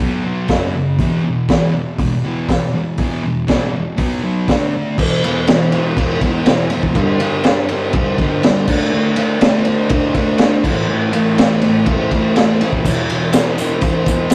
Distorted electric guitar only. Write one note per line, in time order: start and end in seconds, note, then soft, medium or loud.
0.00 0.23 B2 medium
0.00 0.24 F#3 medium
0.00 0.24 B3 medium
0.24 0.48 B2 medium
0.24 0.49 F#3 medium
0.24 0.49 B3 medium
0.50 0.74 F#2 medium
0.50 0.74 C#3 loud
0.50 0.74 F#3 medium
0.75 0.98 F#2 medium
0.75 0.97 C#3 medium
0.99 1.23 E2 medium
0.99 1.23 B2 medium
0.99 1.24 E3 loud
1.24 1.47 E2 medium
1.24 1.47 B2 medium
1.50 1.72 E2 medium
1.50 1.72 B2 medium
1.50 1.74 E3 medium
1.73 1.97 E2 medium
1.73 1.97 B2 medium
1.99 2.22 E2 medium
1.99 2.22 B2 medium
2.24 2.47 E2 medium
2.24 2.47 B2 medium
2.24 2.49 E3 loud
2.48 2.71 E2 medium
2.48 2.72 B2 medium
2.74 2.96 E2 medium
2.74 2.97 B2 medium
2.99 3.22 E2 medium
2.99 3.23 B2 medium
2.99 3.23 E3 loud
3.23 3.46 E2 medium
3.23 3.47 B2 medium
3.47 3.72 E2 medium
3.47 3.73 B2 medium
3.47 3.73 E3 medium
3.73 3.96 E2 medium
3.73 3.96 B2 medium
3.97 4.21 B2 medium
3.97 4.22 F#3 medium
3.97 4.22 B3 loud
4.23 4.47 B2 medium
4.23 4.47 F#3 medium
4.23 4.47 B3 medium
4.49 4.72 D3 medium
4.49 4.73 A3 loud
4.49 4.73 D4 loud
4.75 4.96 D3 medium
4.75 4.97 A3 medium
4.98 5.22 E2 loud
4.98 5.24 B2 loud
4.98 5.24 E3 loud
5.23 5.47 E2 medium
5.23 5.48 B2 medium
5.23 5.48 E3 medium
5.48 5.72 E2 medium
5.48 5.73 B2 loud
5.48 5.74 E3 loud
5.73 5.96 E2 medium
5.73 5.97 B2 loud
5.73 5.98 E3 medium
5.97 6.21 E2 medium
5.97 6.22 B2 loud
5.97 6.23 E3 loud
6.22 6.45 E2 medium
6.22 6.46 B2 medium
6.22 6.47 E3 loud
6.47 6.70 E2 loud
6.47 6.72 B2 loud
6.47 6.72 E3 loud
6.71 6.94 E2 medium
6.71 6.95 B2 medium
6.71 6.96 E3 loud
6.96 7.19 G2 medium
6.96 7.20 D3 loud
6.96 7.22 G3 loud
7.21 7.45 G2 medium
7.21 7.45 D3 loud
7.21 7.46 G3 loud
7.46 7.68 G2 medium
7.46 7.70 D3 loud
7.46 7.70 G3 loud
7.70 7.93 G2 medium
7.70 7.94 D3 medium
7.70 7.95 G3 loud
7.94 8.17 G2 medium
7.94 8.18 D3 loud
7.94 8.20 G3 loud
8.18 8.43 G2 medium
8.18 8.43 D3 loud
8.18 8.45 G3 loud
8.44 8.67 G2 medium
8.44 8.66 D3 loud
8.44 8.68 G3 loud
8.67 8.91 D3 medium
8.67 8.92 A3 loud
8.67 8.93 D4 loud
8.92 9.15 D3 loud
8.92 9.17 A3 loud
8.92 9.17 D4 loud
9.16 9.38 D3 medium
9.16 9.40 A3 medium
9.16 9.41 D4 loud
9.40 9.64 D3 medium
9.40 9.67 A3 loud
9.40 9.66 D4 loud
9.65 9.88 D3 medium
9.65 9.90 A3 loud
9.65 9.91 D4 medium
9.90 10.14 D3 loud
9.90 10.15 A3 loud
9.90 10.16 D4 loud
10.15 10.38 D3 medium
10.15 10.39 A3 loud
10.15 10.40 D4 loud
10.39 10.63 D3 loud
10.39 10.63 A3 loud
10.39 10.63 D4 loud
10.64 10.87 A2 loud
10.64 10.89 E3 medium
10.64 10.89 A3 loud
10.88 11.11 A2 medium
10.88 11.13 E3 medium
10.88 11.14 A3 loud
11.12 11.36 A2 medium
11.12 11.38 E3 medium
11.12 11.38 A3 medium
11.37 11.60 A2 medium
11.37 11.63 E3 medium
11.37 11.62 A3 loud
11.61 11.85 A2 medium
11.61 11.86 E3 medium
11.61 11.88 A3 medium
11.86 12.11 A2 loud
11.86 12.12 E3 loud
11.86 12.13 A3 loud
12.12 12.35 A2 medium
12.12 12.36 E3 medium
12.12 12.38 A3 medium
12.37 12.60 A2 loud
12.37 12.61 E3 loud
12.37 12.62 A3 loud
12.61 12.84 A2 medium
12.61 12.84 E3 medium
12.61 12.85 A3 medium
12.86 13.08 E2 loud
12.86 13.09 B2 loud
12.86 13.11 E3 loud
13.10 13.33 E2 medium
13.10 13.35 B2 medium
13.10 13.36 E3 medium
13.35 13.59 E2 medium
13.35 13.59 B2 loud
13.35 13.61 E3 loud
13.60 13.83 E2 medium
13.60 13.83 B2 loud
13.60 13.84 E3 loud
13.84 14.07 E2 loud
13.84 14.08 B2 loud
13.84 14.09 E3 loud
14.08 14.32 E2 medium
14.08 14.33 B2 medium
14.08 14.34 E3 loud